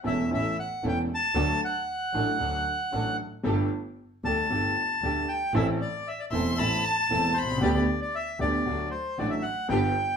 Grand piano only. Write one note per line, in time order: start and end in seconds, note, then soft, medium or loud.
0.04 0.27 E1 medium
0.04 0.26 E2 medium
0.04 0.26 E3 soft
0.04 0.27 A3 soft
0.04 0.27 C#4 soft
0.04 0.26 A4 medium
0.31 0.53 A1 soft
0.31 0.53 A2 medium
0.31 0.53 E3 soft
0.31 0.53 A3 soft
0.31 0.53 C#4 soft
0.31 0.53 A4 soft
0.83 1.05 E1 medium
0.83 1.06 E2 medium
0.83 1.06 E3 soft
0.83 1.06 A3 soft
0.83 1.06 C#4 soft
0.83 1.06 A4 soft
1.34 1.57 D2 medium
1.34 1.58 D3 medium
1.34 1.57 F#3 medium
1.34 1.58 A3 medium
1.34 1.58 D4 medium
1.34 1.58 A4 medium
2.14 2.37 A1 medium
2.14 2.37 A2 medium
2.14 2.36 F#3 soft
2.14 2.37 A3 soft
2.14 2.36 D4 soft
2.14 2.37 A4 medium
2.40 2.62 D2 medium
2.40 2.63 D3 soft
2.40 2.62 F#3 soft
2.40 2.62 A3 soft
2.40 2.62 D4 soft
2.40 2.63 A4 soft
2.92 3.15 A1 medium
2.92 3.15 A2 soft
2.92 3.15 F#3 soft
2.92 3.15 A3 soft
2.92 3.15 D4 soft
2.92 3.16 A4 soft
3.43 3.67 G1 medium
3.43 3.67 G2 medium
3.43 3.67 G3 medium
3.43 3.67 A3 medium
3.43 3.68 D4 medium
3.43 3.67 A4 medium
4.24 4.47 D2 medium
4.24 4.47 D3 medium
4.24 4.46 G3 soft
4.24 4.47 A3 soft
4.24 4.47 D4 soft
4.24 4.47 A4 soft
4.50 4.73 G1 medium
4.50 4.73 G2 medium
4.50 4.73 G3 soft
4.50 4.73 A3 soft
4.50 4.73 D4 soft
4.50 4.73 A4 medium
5.03 5.25 D2 medium
5.03 5.25 D3 medium
5.03 5.25 G3 soft
5.03 5.25 A3 soft
5.03 5.25 D4 soft
5.03 5.25 A4 medium
5.54 5.77 A1 medium
5.54 5.77 A2 medium
5.54 5.77 E3 medium
5.54 5.77 A3 medium
5.54 5.77 C4 medium
5.54 5.77 A4 medium
6.32 6.55 E1 medium
6.32 6.55 E2 medium
6.32 6.55 E3 soft
6.32 6.55 A3 soft
6.32 6.55 C4 soft
6.32 6.55 A4 medium
6.58 6.81 A1 medium
6.58 6.81 A2 medium
6.58 6.81 E3 soft
6.58 6.81 A3 soft
6.58 6.81 C4 soft
6.58 6.81 A4 soft
7.11 7.33 E1 medium
7.11 7.33 E2 medium
7.11 7.33 E3 soft
7.11 7.33 A3 soft
7.11 7.33 C4 soft
7.11 7.33 A4 medium
7.43 7.50 B1 soft
7.50 7.56 C2 medium
7.56 7.63 C#2 medium
7.61 7.84 D2 medium
7.61 7.84 D3 medium
7.61 7.84 G3 medium
7.61 7.84 B3 medium
7.61 7.84 G4 medium
8.39 8.62 D2 medium
8.39 8.62 D3 medium
8.39 8.62 G3 soft
8.39 8.62 B3 soft
8.39 8.62 G4 medium
8.66 8.88 D2 medium
8.66 8.88 D3 medium
8.66 8.88 F#3 soft
8.66 8.88 A3 soft
8.66 8.88 F#4 soft
9.18 9.40 A1 medium
9.18 9.40 A2 medium
9.18 9.40 D3 soft
9.18 9.40 F#3 soft
9.18 9.40 A3 soft
9.18 9.40 F#4 soft
9.68 9.92 G1 medium
9.68 9.92 G2 medium
9.68 9.91 D3 medium
9.68 9.91 G3 medium
9.68 9.91 B3 medium
9.68 9.91 G4 medium